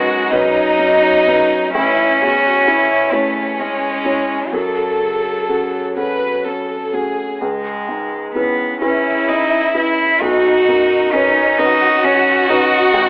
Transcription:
0.00 1.71 B1 medium
0.00 0.14 F#2 soft
0.00 0.33 G#3 medium
0.00 0.29 C#4 soft
0.00 0.29 D#4 soft
0.00 0.30 F#4 medium
0.00 0.29 B4 soft
0.31 1.74 F#3 medium
0.31 0.75 C#4 soft
0.31 0.76 D#4 soft
0.31 1.76 D#4 medium
0.31 0.76 B4 medium
0.79 1.25 C#4 soft
1.26 1.71 C#4 soft
1.26 1.71 D#4 soft
1.26 1.71 B4 soft
1.74 4.50 A1 medium
1.74 3.14 C#4 medium
1.74 2.22 E4 medium
2.22 2.95 E2 soft
2.22 2.69 F#4 medium
2.67 3.09 C#4 soft
2.67 3.10 E4 soft
2.67 3.14 E4 soft
2.67 3.10 C#5 soft
3.12 3.61 A3 medium
3.12 3.55 C#4 soft
3.12 4.54 C#4 medium
3.12 3.55 E4 soft
3.12 3.56 C#5 soft
3.60 4.53 G#3 medium
3.60 4.03 C#4 soft
4.04 4.49 C#4 soft
4.04 4.49 E4 soft
4.04 4.50 C#5 soft
4.52 7.37 F#2 soft
4.52 6.89 F#3 soft
4.52 5.89 A4 medium
5.01 5.78 C#3 soft
5.49 5.93 C#4 soft
5.49 5.94 F#4 soft
5.49 5.94 A4 soft
5.96 6.41 C#4 soft
5.96 6.41 F#4 soft
5.96 6.41 A4 soft
5.96 6.42 B4 medium
6.45 6.91 C#4 soft
6.45 6.94 A4 soft
6.93 7.37 A3 soft
6.93 7.37 C#4 soft
6.93 7.37 F#4 soft
6.93 7.41 G#4 soft
7.41 10.17 C#2 soft
7.41 8.32 G#3 medium
7.88 8.64 G#2 soft
8.35 8.81 B3 medium
8.35 8.78 C#4 soft
8.35 8.78 E4 soft
8.35 8.78 B4 soft
8.81 9.24 C#4 soft
8.81 9.30 C#4 medium
8.81 10.17 E4 medium
8.81 9.24 E4 soft
8.81 9.24 B4 soft
9.28 9.73 C#4 soft
9.28 9.74 D#4 medium
9.74 10.17 C#4 soft
9.74 10.17 E4 soft
9.74 10.22 E4 medium
9.74 10.17 B4 soft
10.21 12.90 B1 medium
10.21 11.56 D#4 medium
10.21 11.14 F#4 medium
10.68 11.41 F#2 soft
11.13 11.60 C#4 medium
11.13 11.54 C#4 soft
11.13 11.55 D#4 soft
11.13 11.55 B4 soft
11.58 12.00 C#4 soft
11.58 12.06 D#4 medium
11.58 12.00 D#4 soft
11.58 13.09 F#4 medium
11.58 12.00 B4 soft
12.03 12.48 C#4 soft
12.03 12.50 C#4 medium
12.49 12.90 C#4 soft
12.49 12.94 D#4 medium
12.49 12.90 D#4 soft
12.49 12.91 B4 soft
12.93 13.09 A1 medium

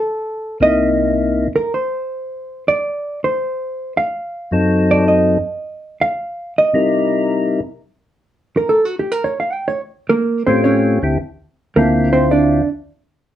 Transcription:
0.00 0.57 A4 medium
0.60 1.47 C2 medium
0.60 1.47 C3 medium
0.60 1.47 A#3 medium
0.60 1.48 D#4 medium
0.60 1.48 E4 medium
0.60 1.52 D#5 medium
1.56 1.72 A#4 medium
1.74 2.63 C5 medium
2.68 3.19 D5 medium
3.24 3.92 C5 medium
3.97 4.86 F5 medium
4.51 5.38 F#2 medium
4.51 5.38 F#3 medium
4.51 5.38 C4 medium
4.51 5.38 D#4 medium
4.51 5.39 A4 medium
4.91 5.07 D5 medium
5.08 5.98 D#5 medium
6.01 6.53 F5 medium
6.58 7.26 D#5 medium
6.73 7.60 C3 medium
6.73 7.61 G3 medium
6.73 7.60 D#4 medium
6.73 7.61 E4 medium
6.73 7.61 A#4 medium
8.57 8.77 A#4 medium
8.69 8.85 A4 medium
8.85 8.95 F#4 medium
8.99 9.12 G4 medium
9.12 9.32 A#4 medium
9.24 9.38 C#5 medium
9.40 9.53 F5 medium
9.53 9.71 G5 medium
9.68 9.80 C#5 medium
10.09 10.46 A#3 medium
10.09 10.46 A#4 medium
10.46 10.99 A2 medium
10.46 10.98 A3 medium
10.46 10.63 C4 medium
10.46 10.98 C4 medium
10.46 10.99 C#4 medium
10.46 10.99 F4 medium
10.46 10.99 G4 medium
10.46 10.63 C5 medium
10.64 11.02 C#4 medium
10.64 11.01 C#5 medium
11.02 11.17 D2 medium
11.02 11.18 D3 medium
11.02 11.18 C4 medium
11.02 11.18 E4 medium
11.02 11.18 G4 medium
11.76 12.62 D2 medium
11.76 12.62 D3 medium
11.76 12.13 A#3 medium
11.76 12.62 C4 medium
11.76 12.62 E4 medium
11.76 12.62 F4 medium
11.76 12.12 A#4 medium
12.13 12.30 C4 medium
12.13 12.30 C5 medium
12.31 12.68 D4 medium
12.31 12.68 D5 medium

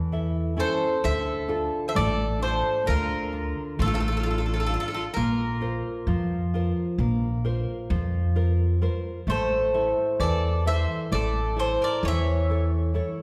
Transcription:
0.00 0.62 E2 loud
0.00 0.55 E3 medium
0.00 0.53 A3 medium
0.00 0.54 D5 medium
0.12 0.55 E4 soft
0.12 0.56 A4 soft
0.12 0.86 E5 soft
0.57 0.95 C#4 medium
0.57 0.94 E4 soft
0.57 0.95 A4 soft
0.57 1.02 A4 medium
0.57 1.04 C5 medium
1.04 1.68 D2 medium
1.04 1.93 D3 medium
1.04 1.85 A4 medium
1.04 1.87 E5 medium
1.48 2.23 D4 soft
1.48 2.23 F4 soft
1.48 2.23 A4 medium
1.88 1.95 C5 medium
1.88 1.96 E5 medium
1.95 2.60 A1 medium
1.95 2.84 A3 medium
1.95 2.40 A4 medium
1.95 2.42 D5 medium
2.39 3.14 D4 soft
2.39 3.14 F4 soft
2.39 2.85 A4 medium
2.39 2.87 C5 medium
2.86 3.52 D2 medium
2.86 3.76 D3 medium
2.86 3.81 A#4 medium
2.90 3.76 F4 medium
3.33 4.06 D4 soft
3.33 4.06 F4 soft
3.79 4.76 A1 loud
3.79 4.68 A3 medium
3.79 3.85 F4 medium
3.79 3.86 A4 medium
3.86 3.93 F4 medium
3.86 3.94 A4 medium
3.94 4.01 F4 medium
3.94 3.99 A4 medium
4.00 4.09 F4 soft
4.00 4.07 A4 medium
4.08 4.15 A4 medium
4.12 4.18 F4 medium
4.17 4.25 F4 soft
4.17 4.22 A4 soft
4.23 4.69 D4 soft
4.23 4.69 F4 soft
4.23 4.32 F4 soft
4.23 4.29 A4 medium
4.23 4.69 A4 soft
4.31 4.39 F4 soft
4.31 4.37 A4 soft
4.38 4.47 F4 soft
4.38 4.45 A4 soft
4.46 4.54 F4 soft
4.46 4.52 A4 soft
4.54 4.61 F4 soft
4.54 4.59 A4 medium
4.60 4.68 F4 soft
4.60 4.65 A4 medium
4.67 5.07 D4 medium
4.67 4.74 F4 soft
4.67 5.07 F4 soft
4.67 4.73 A4 medium
4.71 5.07 A4 medium
4.71 4.79 A4 soft
4.75 4.82 F4 soft
4.80 4.89 F4 soft
4.80 4.87 A4 medium
4.88 4.95 F4 soft
4.88 4.93 A4 soft
4.94 5.04 F4 medium
4.94 5.03 A4 medium
5.14 5.81 A#1 medium
5.14 6.05 A#3 medium
5.14 7.87 F4 medium
5.14 7.86 A#4 medium
5.61 6.35 F4 soft
5.61 6.35 A#4 soft
5.61 6.35 C5 soft
6.07 6.71 F2 medium
6.07 6.97 F3 medium
6.54 7.27 F4 soft
6.54 7.28 A#4 soft
6.54 7.28 C5 medium
6.98 7.63 A#1 medium
6.98 7.89 A#3 medium
7.45 8.18 F4 soft
7.45 8.18 A#4 soft
7.45 8.19 C5 medium
7.90 8.87 F2 loud
7.90 8.80 F3 medium
8.36 8.80 F4 soft
8.36 8.81 A#4 soft
8.36 8.81 C5 medium
8.82 9.19 F4 medium
8.82 9.19 A#4 medium
8.82 9.19 C5 medium
9.27 9.92 A1 medium
9.27 10.17 A3 medium
9.27 10.17 C5 medium
9.31 10.17 A4 medium
9.74 10.48 E4 medium
9.74 10.47 A4 soft
9.74 10.47 E5 medium
10.20 10.84 E2 medium
10.20 11.09 E3 medium
10.20 10.64 A4 medium
10.20 10.63 D5 medium
10.66 11.39 E4 soft
10.66 11.39 A4 soft
10.66 11.10 C5 medium
10.66 11.40 E5 medium
10.66 11.12 E5 medium
11.12 11.76 A1 medium
11.12 12.00 A3 medium
11.12 11.56 A4 medium
11.12 11.59 D5 medium
11.56 12.30 E4 soft
11.56 12.30 A4 soft
11.56 11.80 A4 medium
11.56 11.82 C5 medium
11.56 12.31 C#5 medium
11.82 12.02 A#4 medium
11.82 12.06 D5 medium
12.03 12.99 E2 medium
12.03 12.93 E3 medium
12.03 13.22 C#5 medium
12.08 13.22 E5 loud
12.50 12.93 E4 soft
12.50 12.93 A4 soft
12.50 12.94 C#5 soft
12.94 13.22 E4 soft
12.94 13.22 A4 soft
12.94 13.22 C#5 medium

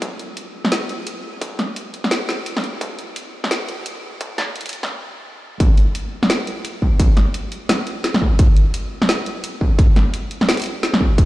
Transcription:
0.02 kick loud
0.02 closed hi-hat medium
0.19 closed hi-hat soft
0.37 closed hi-hat medium
0.65 snare medium
0.72 snare loud
0.72 closed hi-hat medium
0.89 closed hi-hat soft
1.07 closed hi-hat medium
1.41 kick loud
1.41 closed hi-hat medium
1.59 snare medium
1.59 closed hi-hat soft
1.76 closed hi-hat medium
1.94 closed hi-hat soft
2.04 snare medium
2.11 snare loud
2.11 closed hi-hat medium
2.29 snare medium
2.29 closed hi-hat soft
2.46 closed hi-hat medium
2.57 snare medium
2.64 closed hi-hat soft
2.81 kick loud
2.81 closed hi-hat medium
2.99 closed hi-hat soft
3.16 closed hi-hat medium
3.44 snare medium
3.51 snare loud
3.51 closed hi-hat medium
3.69 closed hi-hat soft
3.86 closed hi-hat medium
4.21 kick loud
4.21 closed hi-hat medium
4.38 snare medium
4.38 closed hi-hat soft
4.56 closed hi-hat soft
4.61 closed hi-hat soft
4.66 closed hi-hat soft
4.69 closed hi-hat medium
4.73 closed hi-hat soft
4.83 snare medium
5.60 kick loud
5.60 closed hi-hat medium
5.77 closed hi-hat soft
5.95 closed hi-hat medium
6.23 snare medium
6.30 snare loud
6.30 closed hi-hat medium
6.47 closed hi-hat soft
6.65 closed hi-hat medium
6.82 kick medium
7.00 kick loud
7.00 closed hi-hat medium
7.17 snare medium
7.17 closed hi-hat soft
7.34 closed hi-hat medium
7.52 closed hi-hat soft
7.69 snare loud
7.69 snare medium
7.69 closed hi-hat medium
7.87 closed hi-hat soft
8.04 snare medium
8.04 closed hi-hat medium
8.14 snare medium
8.22 kick medium
8.39 kick loud
8.39 closed hi-hat medium
8.57 closed hi-hat soft
8.74 closed hi-hat medium
9.02 snare medium
9.09 snare loud
9.09 closed hi-hat medium
9.26 closed hi-hat soft
9.44 closed hi-hat medium
9.61 kick medium
9.79 kick loud
9.79 closed hi-hat medium
9.96 snare medium
9.96 closed hi-hat soft
10.14 closed hi-hat medium
10.31 closed hi-hat soft
10.41 snare medium
10.49 snare loud
10.49 closed hi-hat soft
10.51 closed hi-hat soft
10.54 closed hi-hat soft
10.57 closed hi-hat medium
10.60 closed hi-hat medium
10.62 closed hi-hat medium
10.64 closed hi-hat medium
10.66 closed hi-hat soft
10.83 snare medium
10.83 closed hi-hat medium
10.94 snare medium
11.01 kick medium
11.18 kick loud
11.18 closed hi-hat medium

